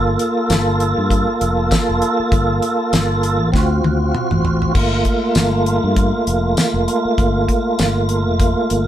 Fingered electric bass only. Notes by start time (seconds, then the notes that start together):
Already playing: G1
0.50 G1
0.98 G2
1.41 F1
1.89 F1
2.20 muted fingered electric bass stroke
2.32 G1
2.93 G1
3.40 A1
3.54 D2
3.84 D2
4.32 A1
4.75 G1
5.36 G1
5.84 G2
6.27 F1
6.74 F1
7.05 muted fingered electric bass stroke
7.18 G1
7.80 G1
8.27 F1
8.71 G1